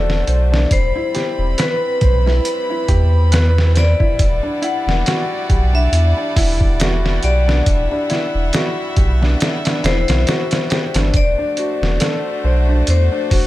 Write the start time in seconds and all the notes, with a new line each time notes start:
Already playing: E1 A3 D4 F#4 A4 C5 D5
0.10 snare
0.27 B1 C5, closed hi-hat
0.52 D4, snare
0.71 E1 G3 C4 E4 C5 B5, kick, closed hi-hat
0.95 E4
1.14 G4, snare, closed hi-hat
1.38 E1
1.58 B4, snare, closed hi-hat
2.01 B1 C5, kick, closed hi-hat
2.26 E4, snare
2.45 closed hi-hat
2.70 E4
2.88 E2 G4, kick, closed hi-hat
3.32 B4, snare, closed hi-hat
3.58 snare
3.75 C5 D5, snare, closed hi-hat
4.00 E4, kick
4.18 E1 D5 F#5, kick, closed hi-hat
4.43 D4
4.62 E4 F#5, closed hi-hat
4.87 E1, snare
5.05 F#4, snare, closed hi-hat
5.49 B1 G4, kick, closed hi-hat
5.73 D4 E5
5.92 E2, closed hi-hat
6.17 D4
6.36 E1 E4, kick, open hi-hat
6.61 kick
6.80 F#4, snare, closed hi-hat
7.06 snare
7.23 B1 G4 D5, closed hi-hat
7.48 D4, snare
7.66 E1 E5, kick, closed hi-hat
7.91 D4
8.10 E4, snare, closed hi-hat
8.34 E1
8.53 F#4, snare, closed hi-hat
8.96 B1 G4, kick, closed hi-hat
9.21 D4, snare
9.40 snare, closed hi-hat
9.65 D4, snare, closed hi-hat
9.84 E1 E4 C5, snare, closed hi-hat
10.08 B1, snare, closed hi-hat
10.27 F#4, snare, closed hi-hat
10.51 snare, closed hi-hat
10.70 G4, snare, closed hi-hat
10.94 G1 D4, snare, closed hi-hat
11.14 E1 A3 D4 F#4 C5 D5, kick, closed hi-hat
11.38 D4
11.57 F#4, closed hi-hat
11.82 E1, snare
12.00 A4, snare, closed hi-hat
12.44 B1 C5
12.68 D4
12.87 E2 C5, closed hi-hat
13.12 D4
13.30 E1 F#4, kick, open hi-hat